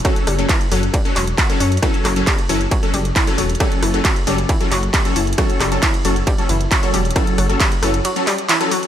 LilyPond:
<<
  \new Staff \with { instrumentName = "Synth stab" } { \time 4/4 \key fis \phrygian \tempo 4 = 135 <fis cis' a'>8. <fis cis' a'>16 r8 <fis cis' a'>16 r8 <fis cis' a'>16 r8. <fis cis' a'>16 r8 | <fis cis' a'>8. <fis cis' a'>16 r8 <fis cis' a'>16 r8 <fis cis' a'>16 r8. <fis cis' a'>16 r8 | <fis cis' a'>8. <fis cis' a'>16 r8 <fis cis' a'>16 r8 <fis cis' a'>16 r8. <fis cis' a'>16 r8 | <fis cis' a'>8. <fis cis' a'>16 r8 <fis cis' a'>16 r8 <fis cis' a'>16 r8. <fis cis' a'>16 r8 |
<fis cis' a'>8. <fis cis' a'>16 r8 <fis cis' a'>16 r8 <fis cis' a'>16 r8. <fis cis' a'>16 r8 | }
  \new Staff \with { instrumentName = "Synth arpeggio sound" } { \clef bass \time 4/4 \key fis \phrygian fis8 g8 e8 fis8 g8 fis8 fis'8 cis'8 | e8 fis8 g8 e8 fis8 g8 e8 fis8 | g8 e8 fis8 g8 e8 fis8 g8 e8 | fis8 g8 e8 fis8 g8 e8 fis8 g8 |
e8 fis8 g8 e8 fis8 g8 e8 fis8 | }
  \new Staff \with { instrumentName = "Detuned saw bass" } { \clef bass \time 4/4 \key fis \phrygian r8 fis,,8 r8 fis,,8 r8 e,,8 r8 fis,8 | r8 fis,,8 r8 fis,,8 r8 fis,,8 r8 e,,8 | r8 fis,,8 r8 fis,,8 r8 fis,,8 r8 fis,,8 | r8 fis,,8 r8 fis,,8 r8 fis,,8 r8 e,,8 |
r8 fis,,8 r8 fis,,8 r2 | }
  \new DrumStaff \with { instrumentName = "Drums" } \drummode { \time 4/4 <hh bd cymr ss>16 hh16 <hho ss>16 hh16 <hc hh bd cymr>16 hh16 hho16 hh16 <hh bd cymr>16 hh16 <hc hho>16 hh16 <hc hh bd cymr>16 hh16 hho16 hh32 hh32 | <hh bd cymr ss>16 hh16 <hc hho ss>16 hh16 <hc hh bd cymr>16 hh16 hho16 hh16 <hh bd cymr>16 hh16 hho16 hh16 <hc hh bd cymr>16 hh16 hho16 hh32 hh32 | <hh bd cymr ss>16 hh16 <hho ss>16 hh16 <hc hh bd cymr>16 hh16 hho16 hh16 <hh bd cymr>16 hh16 <hc hho>16 hh16 <hc hh bd cymr>16 hh16 hho16 hh32 hh32 | <hh bd cymr ss>16 hh16 <hc hho ss>16 hh16 <hc hh bd cymr>16 hh16 hho16 hh16 <hh bd cymr>16 hh16 hho16 hh16 <hc hh bd cymr>16 hh16 hho16 hh32 hh32 |
<hh bd cymr ss>16 hh16 <hho ss>16 hh16 <hc hh bd cymr>16 hh16 <hho ss>16 hh16 <hh cymr>16 hh16 <hc hho>16 hh16 <hc hh cymr>16 hh16 hho16 hh16 | }
>>